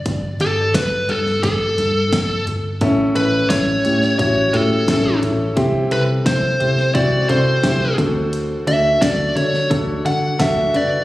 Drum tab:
HH |x-x-x-x-x-x-x-x-|x-x-x-x-x-x-x-x-|x-x-x-x-x-x-x-x-|x-x-x-x-x-x-x-x-|
SD |----o--o----o---|----o--o----o---|----o--o----o---|----o--o----o---|
FT |------o---o--oo-|------o---o--oo-|------o---o--oo-|------o---o--oo-|
BD |o---o---o---o---|o---o---o---o---|o---o---o---o-o-|----o---o---o---|